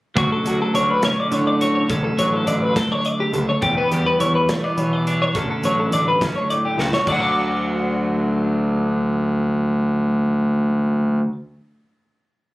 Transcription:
0.16 1.89 D2 medium
0.16 0.29 D2 loud
0.16 0.74 D3 medium
0.16 0.45 F#3 medium
0.16 1.03 C#4 medium
0.16 0.32 F#4 medium
0.16 1.60 F#4 medium
0.16 kick loud
0.16 closed hi-hat medium
0.32 0.47 A4 medium
0.45 0.57 D2 medium
0.45 2.17 F#3 medium
0.45 0.61 F#4 medium
0.45 closed hi-hat medium
0.62 0.75 A4 medium
0.74 0.98 D2 medium
0.74 2.46 D3 medium
0.74 0.90 C#5 medium
0.74 closed hi-hat medium
0.90 1.04 B4 medium
1.03 1.86 C#4 medium
1.03 1.19 C#5 medium
1.03 snare loud
1.03 closed hi-hat medium
1.20 1.33 D5 medium
1.31 1.89 A2 medium
1.31 1.79 D3 medium
1.31 1.47 C#5 medium
1.31 closed hi-hat medium
1.47 1.61 D5 medium
1.61 1.86 F#4 medium
1.61 1.74 C#5 medium
1.61 closed hi-hat medium
1.75 1.90 C#5 medium
1.89 2.01 A1 medium
1.89 3.32 D2 medium
1.89 3.59 C#4 medium
1.89 2.03 A4 medium
1.89 kick loud
1.89 closed hi-hat medium
2.04 2.19 A4 medium
2.18 2.42 A1 medium
2.18 3.62 F#3 medium
2.18 2.33 C#5 medium
2.18 closed hi-hat medium
2.33 2.47 A4 medium
2.47 2.70 A1 medium
2.47 4.19 D3 medium
2.47 2.62 D5 medium
2.47 closed hi-hat medium
2.62 2.76 B4 medium
2.76 2.92 A4 medium
2.76 kick medium
2.76 snare loud
2.76 closed hi-hat medium
2.92 3.06 C#5 medium
3.05 3.20 D5 medium
3.05 closed hi-hat medium
3.20 3.34 G4 medium
3.33 3.45 C#2 medium
3.33 3.62 D2 medium
3.33 3.48 A4 medium
3.33 closed hi-hat medium
3.49 3.63 C#5 medium
3.62 5.31 E2 medium
3.62 3.74 E2 medium
3.62 3.78 A3 medium
3.62 3.77 G4 medium
3.62 kick loud
3.62 closed hi-hat medium
3.77 4.49 B3 medium
3.77 3.91 B4 medium
3.91 4.03 E2 medium
3.91 5.32 G3 medium
3.91 4.06 G4 medium
3.91 closed hi-hat medium
4.06 4.20 B4 medium
4.20 4.43 E2 medium
4.20 5.31 E3 medium
4.20 4.35 C#5 medium
4.20 closed hi-hat medium
4.35 4.50 B4 medium
4.49 4.64 A3 medium
4.49 4.63 C#5 medium
4.49 snare loud
4.49 closed hi-hat medium
4.64 5.35 B3 soft
4.64 4.79 D5 medium
4.77 5.32 B2 medium
4.77 5.24 E3 medium
4.77 4.93 C#5 medium
4.77 closed hi-hat medium
4.93 5.07 D5 medium
5.07 6.79 D4 medium
5.07 5.21 C#5 medium
5.07 closed hi-hat medium
5.22 5.36 C#5 medium
5.35 5.47 D2 medium
5.35 7.06 D2 medium
5.35 6.22 C#4 medium
5.35 5.50 A4 medium
5.35 kick loud
5.35 closed hi-hat medium
5.51 5.64 A4 medium
5.63 5.87 A1 medium
5.63 7.10 F#3 medium
5.63 5.79 C#5 medium
5.63 closed hi-hat medium
5.80 5.93 A4 medium
5.91 6.15 A1 medium
5.91 7.08 D3 medium
5.91 6.07 D5 medium
5.91 closed hi-hat medium
6.08 6.22 B4 medium
6.21 7.05 C#4 medium
6.21 6.36 A4 medium
6.21 kick medium
6.21 snare loud
6.21 closed hi-hat medium
6.36 6.50 C#5 medium
6.50 7.08 A2 medium
6.50 6.64 D5 medium
6.50 closed hi-hat medium
6.65 6.80 G4 medium
6.77 6.90 C#2 medium
6.77 7.04 F#4 medium
6.77 6.93 A4 medium
6.77 snare medium
6.93 7.08 C#5 medium
6.93 snare medium
7.07 11.19 D2 medium
7.07 11.23 D2 medium
7.07 11.25 D3 medium
7.07 7.16 D5 medium
7.07 kick medium
7.07 crash medium
7.11 11.27 F#3 medium
7.11 11.24 F#5 medium
7.16 11.32 F#4 medium
7.16 7.20 A5 medium
7.20 11.32 D6 medium

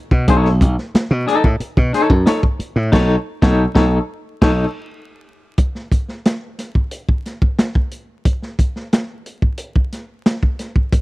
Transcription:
0.11 0.26 B2 medium
0.11 kick medium
0.28 0.56 B1 loud
0.28 0.48 D#4 medium
0.28 0.48 A4 medium
0.28 0.49 C#5 loud
0.28 kick loud
0.28 closed hi-hat medium
0.45 snare soft
0.61 0.75 B1 medium
0.61 kick medium
0.61 closed hi-hat medium
0.78 snare soft
0.94 muted slap bass stroke soft
0.94 snare loud
0.94 closed hi-hat medium
1.11 1.25 B2 loud
1.26 1.46 D#4 medium
1.26 1.47 A4 loud
1.26 1.47 D#5 medium
1.26 snare soft
1.26 closed hi-hat medium
1.44 1.58 A2 medium
1.44 kick medium
1.60 muted slap bass stroke soft
1.60 closed hi-hat medium
1.77 1.91 B2 medium
1.77 kick medium
1.93 2.13 D#4 medium
1.93 2.14 A4 medium
1.93 2.14 C#5 medium
1.93 snare soft
1.93 closed hi-hat medium
2.10 2.24 F#2 medium
2.10 kick loud
2.26 2.40 D#4 medium
2.26 2.40 A4 medium
2.26 2.41 C#5 loud
2.26 snare loud
2.26 closed hi-hat loud
2.43 kick medium
2.59 muted slap bass stroke soft
2.59 closed hi-hat medium
2.76 2.90 A2 medium
2.92 3.15 B1 loud
2.92 3.15 D#4 loud
2.92 3.15 A4 loud
2.92 3.16 C#5 loud
2.92 kick medium
2.92 snare loud
2.92 crash medium
3.42 3.65 B1 loud
3.42 3.65 D#4 medium
3.42 3.65 A4 medium
3.42 3.65 C#5 loud
3.42 kick loud
3.42 snare loud
3.75 3.98 B1 loud
3.75 3.97 D#4 medium
3.75 3.98 A4 medium
3.75 3.98 C#5 medium
3.75 kick medium
3.75 snare loud
4.42 4.64 B1 loud
4.42 4.64 D#4 loud
4.42 4.65 A4 loud
4.42 4.65 C#5 medium
4.42 kick loud
4.42 snare medium
4.42 crash medium
5.58 kick loud
5.58 closed hi-hat medium
5.75 snare soft
5.92 kick medium
5.92 closed hi-hat medium
6.08 snare soft
6.25 snare medium
6.25 closed hi-hat medium
6.58 snare soft
6.58 closed hi-hat medium
6.75 kick medium
6.91 closed hi-hat medium
7.08 kick medium
7.26 snare soft
7.26 closed hi-hat medium
7.42 kick medium
7.59 snare loud
7.59 closed hi-hat medium
7.75 kick medium
7.91 closed hi-hat medium
8.25 kick loud
8.25 closed hi-hat medium
8.42 snare soft
8.59 kick medium
8.59 closed hi-hat medium
8.76 snare soft
8.93 snare loud
8.93 closed hi-hat medium
9.26 closed hi-hat medium
9.42 kick medium
9.58 closed hi-hat medium
9.76 kick medium
9.92 snare soft
9.92 closed hi-hat medium
10.26 snare loud
10.26 closed hi-hat medium
10.43 kick medium
10.59 snare soft
10.59 closed hi-hat medium
10.76 kick medium
10.92 kick loud
10.92 closed hi-hat medium

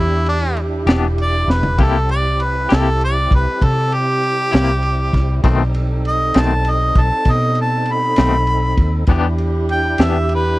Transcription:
0.00 0.84 E2 medium
0.00 1.63 D4 medium
0.00 1.76 D4 medium
0.00 0.27 E4 medium
0.00 1.76 E4 medium
0.00 5.39 E4 medium
0.00 1.63 G4 medium
0.00 1.77 G4 medium
0.26 0.57 D4 loud
0.26 ride medium
0.57 ride medium
0.86 1.44 E1 medium
0.86 1.07 B3 medium
0.86 1.07 D4 medium
0.86 1.06 G4 medium
0.86 snare loud
0.86 ride medium
0.90 1.08 E3 medium
1.18 ride medium
1.22 1.52 D5 loud
1.48 1.76 E1 medium
1.48 1.79 B4 medium
1.48 snare medium
1.63 floor tom medium
1.78 2.66 C2 medium
1.78 1.97 C3 medium
1.78 8.90 G3 medium
1.78 1.97 A#3 medium
1.78 5.41 C4 medium
1.78 1.98 E4 medium
1.78 5.41 E4 medium
1.78 5.41 G4 medium
1.78 1.98 G4 medium
1.78 5.42 G4 medium
1.78 2.10 A4 medium
1.78 kick loud
1.78 ride medium
2.09 2.44 D5 loud
2.09 ride medium
2.40 2.76 B4 medium
2.40 ride medium
2.69 3.28 C2 medium
2.69 2.90 C3 medium
2.69 2.89 A#3 medium
2.69 2.89 E4 medium
2.69 2.88 G4 medium
2.69 snare loud
2.69 ride medium
2.74 3.02 A4 medium
3.01 3.32 D5 loud
3.01 ride medium
3.31 3.45 C2 medium
3.31 kick medium
3.31 ride medium
3.35 3.66 B4 medium
3.62 4.49 C3 loud
3.62 3.95 A4 loud
3.62 kick medium
3.62 ride medium
3.92 5.41 G4 loud
3.92 ride medium
4.23 ride medium
4.51 5.10 C2 medium
4.51 4.72 C3 medium
4.51 4.71 A#3 medium
4.51 4.71 E4 medium
4.51 4.70 G4 medium
4.51 snare loud
4.51 ride medium
4.83 ride medium
5.13 5.42 C2 loud
5.13 kick medium
5.13 snare soft
5.13 ride medium
5.44 6.31 B1 medium
5.44 5.62 B2 medium
5.44 5.63 D#3 medium
5.44 5.63 A3 medium
5.44 9.04 C4 medium
5.44 5.63 C4 medium
5.44 9.05 D#4 medium
5.44 8.90 D#4 medium
5.44 9.05 A4 medium
5.44 8.90 A4 medium
5.44 kick loud
5.44 ride medium
5.74 ride medium
6.05 6.41 D#5 loud
6.05 ride medium
6.34 6.92 B1 medium
6.34 6.54 B2 medium
6.34 6.54 D#3 medium
6.34 6.53 A3 medium
6.34 6.53 C4 medium
6.34 snare loud
6.34 ride medium
6.40 6.72 A5 loud
6.65 ride medium
6.70 7.03 D#5 medium
6.95 7.10 B1 loud
6.95 kick medium
6.95 ride medium
7.02 7.33 A5 loud
7.25 8.13 B2 loud
7.25 kick medium
7.25 ride medium
7.31 7.58 D#5 loud
7.55 ride medium
7.61 7.94 A5 medium
7.86 ride medium
7.92 9.07 B5 loud
8.16 8.74 B1 medium
8.16 8.37 B2 medium
8.16 8.37 D#3 medium
8.16 8.36 A3 medium
8.16 8.36 C4 medium
8.16 snare loud
8.16 ride medium
8.47 ride medium
8.77 9.06 D#2 loud
8.77 kick medium
8.77 ride medium
9.07 9.95 E2 medium
9.07 9.27 E3 medium
9.07 9.27 B3 medium
9.07 10.59 D4 medium
9.07 9.27 D4 loud
9.07 10.59 E4 medium
9.07 10.59 G4 medium
9.07 kick loud
9.07 ride medium
9.11 9.28 G4 medium
9.38 ride medium
9.69 10.03 G5 loud
9.69 ride medium
9.98 10.56 E2 medium
9.98 10.19 E3 medium
9.98 10.18 B3 medium
9.98 10.18 D4 medium
9.98 10.18 G4 medium
9.98 10.30 E5 loud
9.98 snare loud
9.98 ride medium
10.29 ride medium
10.35 10.59 B4 medium

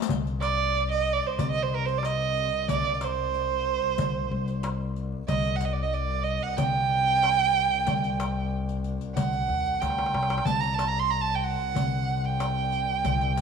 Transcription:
0.02 riq medium
0.09 1.18 C2 medium
0.09 5.28 C2 medium
0.09 riq medium
0.09 darbuka dum medium
0.27 riq soft
0.41 0.87 D5 loud
0.41 riq soft
0.41 darbuka tek medium
0.74 riq soft
0.92 1.14 D#5 medium
1.13 1.28 D5 medium
1.26 1.41 C5 medium
1.39 2.48 C3 medium
1.39 1.50 D5 medium
1.39 riq medium
1.39 darbuka dum medium
1.51 1.64 D#5 medium
1.63 1.76 C5 medium
1.71 1.87 A#4 medium
1.71 darbuka ka soft
1.86 2.00 C5 medium
1.86 riq soft
1.99 2.07 D5 medium
2.03 2.69 D#5 medium
2.03 riq soft
2.03 darbuka tek medium
2.37 riq soft
2.53 darbuka ka soft
2.68 3.77 C2 medium
2.68 2.94 D5 loud
2.68 riq medium
2.68 darbuka dum medium
2.85 riq soft
2.94 3.05 D5 medium
3.01 4.74 C5 medium
3.01 riq soft
3.01 darbuka tek medium
3.34 riq soft
3.98 4.26 C2 medium
3.98 riq medium
3.98 darbuka dum medium
4.31 5.13 C2 medium
4.31 darbuka ka soft
4.48 riq soft
4.63 riq soft
4.63 darbuka tek medium
4.96 riq soft
5.12 darbuka ka soft
5.28 6.37 C2 medium
5.28 10.45 C2 medium
5.28 5.58 D#5 medium
5.28 riq medium
5.28 darbuka dum medium
5.45 riq soft
5.56 5.67 F#5 medium
5.61 riq soft
5.65 5.75 D#5 medium
5.73 5.84 D5 medium
5.82 5.85 D#5 medium
5.82 5.95 D#5 medium
5.93 6.25 D5 medium
5.93 riq soft
6.23 6.44 D#5 medium
6.43 6.58 F#5 medium
6.58 7.67 C3 medium
6.58 8.48 G5 loud
6.58 riq medium
6.58 darbuka dum loud
6.91 darbuka ka soft
7.07 riq soft
7.22 riq soft
7.22 darbuka tek medium
7.55 riq soft
7.72 darbuka ka soft
7.87 8.96 C2 medium
7.87 riq medium
7.87 darbuka dum medium
8.04 riq soft
8.04 darbuka ka soft
8.20 riq soft
8.20 darbuka tek medium
8.53 darbuka ka soft
8.69 riq soft
8.69 darbuka ka soft
8.84 riq soft
9.01 riq soft
9.01 darbuka ka soft
9.16 9.44 C2 medium
9.16 9.82 F#5 medium
9.16 riq medium
9.16 darbuka dum medium
9.33 riq soft
9.33 darbuka ka soft
9.49 9.78 D#2 medium
9.49 darbuka ka soft
9.66 riq soft
9.66 darbuka ka soft
9.80 10.11 D2 medium
9.80 10.47 G5 medium
9.80 riq soft
9.80 darbuka tek medium
9.90 darbuka ka medium
9.98 darbuka tek medium
10.06 darbuka ka medium
10.13 10.43 C2 medium
10.13 darbuka tek medium
10.23 darbuka ka medium
10.30 riq soft
10.30 darbuka tek medium
10.38 darbuka ka medium
10.45 11.54 C2 medium
10.45 13.41 C2 medium
10.45 10.62 A5 loud
10.45 riq medium
10.45 darbuka dum medium
10.60 10.76 A#5 medium
10.60 riq soft
10.74 10.89 A5 medium
10.79 riq medium
10.79 darbuka tek medium
10.88 11.01 A#5 medium
10.99 11.12 C6 medium
11.10 11.23 A#5 medium
11.10 riq soft
11.21 11.37 A5 medium
11.35 11.46 G5 medium
11.44 12.26 F#5 medium
11.75 12.84 C3 medium
11.75 riq medium
11.75 darbuka dum medium
12.08 darbuka ka soft
12.25 13.41 G5 medium
12.40 riq medium
12.40 darbuka tek medium
12.72 riq soft
12.90 darbuka ka soft
13.04 13.41 C2 medium
13.04 riq medium
13.04 darbuka dum medium
13.21 riq soft
13.37 riq medium

